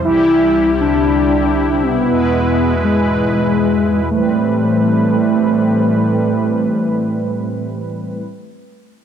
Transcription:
0.04 C2 C3 G3 E4 G4
0.81 D4
1.83 B3
2.08 E2 B2 G#3 B4
2.84 G#3
4.11 A2 E3 G3 A3 C4 B4

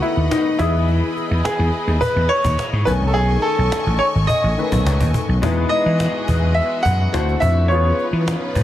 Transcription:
Already playing: D#3 A3 B3 F#4 D#5 F#5 B5
0.02 E4, cajon slap
0.17 D#2
0.31 D#4, cajon slap
0.58 E2 E3 B3 E4 G#4 D#5, cajon bass, cajon slap
0.88 cajon slap
1.16 cajon slap
1.31 E2
1.45 G#4, cajon slap
1.59 E2
1.87 D#2, cajon slap
2.01 B4, cajon bass, cajon slap
2.16 E2
2.29 C#5, cajon slap
2.44 D#2, cajon bass
2.59 cajon slap
2.73 G#2
2.85 B1 D#3 A3 C#4 A4 B4 G#5 C#6, cajon bass, cajon slap
3.02 C2
3.07 A4
3.14 B1 G#4, cajon slap
3.42 A4, cajon slap
3.58 B1
3.72 cajon slap
3.86 A1
3.99 C#5, cajon slap
4.15 G#1, cajon slap
4.27 D#5, cajon bass, cajon slap
4.44 A1
4.57 D#3 A3 C#4 B4, cajon slap
4.72 B1, cajon bass
4.86 C#2, cajon slap
5.01 D#2, cajon bass
5.14 cajon bass, cajon slap
5.29 B1, cajon slap
5.42 E2 E3 G#3 B3 D#4 E4 F#4 G#4 B4 D#5, cajon bass
5.69 D#5, cajon slap
5.86 E3
6.00 cajon slap
6.28 E2, cajon bass
6.54 E5, cajon slap
6.83 F#2 F#5, cajon bass
7.13 D2 D3 A3 C4 D4 E4 F#4 C5, cajon slap
7.28 cajon slap
7.40 F2 E5, cajon bass
7.68 E2 F3 B3 C#4 D#4 F4 G#4 B4 C#5, cajon slap
7.99 cajon slap
8.13 E3
8.28 cajon slap
8.55 G#2, cajon bass

